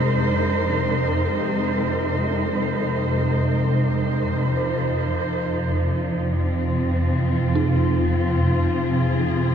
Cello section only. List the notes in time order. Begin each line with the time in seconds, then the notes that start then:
Already playing: G#3 D#4 A#4 C5
4.54 F3
6.14 C4
7.07 F4
8.79 G#4